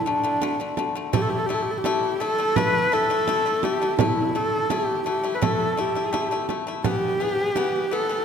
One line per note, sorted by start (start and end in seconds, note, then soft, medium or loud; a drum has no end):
0.05 0.20 D3 medium
0.05 0.21 A3 medium
0.05 0.77 D4 medium
0.24 0.38 D3 medium
0.24 0.38 A3 medium
0.24 frame drum soft
0.42 0.56 D3 medium
0.42 0.57 A3 loud
0.42 frame drum medium
0.60 0.74 D3 medium
0.60 0.75 A3 medium
0.77 0.92 D3 medium
0.77 0.92 A3 medium
0.77 frame drum medium
0.95 1.10 D3 medium
0.95 1.10 A3 medium
1.13 1.42 A3 medium
1.13 1.42 E4 loud
1.13 1.23 G4 medium
1.13 frame drum medium
1.21 1.31 A4 medium
1.30 1.39 G4 medium
1.38 1.47 A4 medium
1.46 1.78 A3 medium
1.46 1.55 G4 medium
1.50 1.78 E4 medium
1.50 1.63 A4 medium
1.62 1.72 G4 medium
1.71 1.79 A4 medium
1.78 2.22 G4 medium
1.84 2.13 A3 medium
1.84 2.14 E4 loud
1.84 frame drum medium
2.20 2.35 A3 medium
2.20 2.35 E4 medium
2.20 2.58 A4 loud
2.20 frame drum soft
2.38 2.53 A3 medium
2.38 2.53 E4 medium
2.56 2.85 A3 medium
2.56 2.86 E4 loud
2.56 2.95 B4 loud
2.56 frame drum medium
2.74 frame drum soft
2.92 3.06 A3 medium
2.92 3.07 E4 medium
2.92 3.65 A4 medium
3.10 3.24 A3 medium
3.10 3.25 E4 medium
3.10 frame drum soft
3.28 3.42 A3 medium
3.28 3.42 E4 medium
3.28 frame drum medium
3.46 3.60 A3 medium
3.46 3.61 E4 medium
3.63 3.78 A3 medium
3.63 3.78 E4 medium
3.63 3.99 G4 medium
3.63 frame drum medium
3.82 3.96 A3 medium
3.82 3.96 E4 medium
3.99 4.28 A3 medium
3.99 4.37 E4 medium
3.99 4.28 E4 medium
3.99 frame drum medium
4.35 4.63 A3 medium
4.35 4.64 E4 medium
4.35 4.73 A4 medium
4.70 4.99 A3 medium
4.70 4.99 E4 loud
4.70 5.07 G4 medium
4.70 frame drum medium
5.06 5.20 A3 medium
5.06 5.21 E4 medium
5.06 5.36 G4 medium
5.06 frame drum soft
5.23 5.38 A3 medium
5.23 5.39 E4 medium
5.34 5.44 B4 medium
5.42 5.70 A3 medium
5.42 5.71 E4 loud
5.42 5.82 A4 medium
5.42 frame drum medium
5.60 frame drum soft
5.77 5.92 A3 medium
5.77 5.92 E4 medium
5.77 6.50 G4 medium
5.95 6.10 A3 medium
5.95 6.10 E4 medium
5.95 frame drum soft
6.13 6.27 A3 medium
6.13 6.28 E4 medium
6.13 frame drum medium
6.31 6.45 A3 medium
6.31 6.46 E4 medium
6.49 6.63 A3 medium
6.49 6.64 E4 medium
6.49 frame drum medium
6.67 6.81 A3 medium
6.67 6.82 E4 medium
6.84 7.13 E3 medium
6.84 7.14 B3 medium
6.84 7.94 G4 medium
6.84 frame drum medium
7.20 7.49 E3 medium
7.20 7.49 B3 medium
7.56 7.85 E3 medium
7.56 7.85 B3 loud
7.56 frame drum medium
7.91 8.06 E3 medium
7.91 8.06 B3 medium
7.91 8.25 A4 medium
7.91 frame drum soft
8.09 8.24 E3 medium
8.09 8.24 B3 medium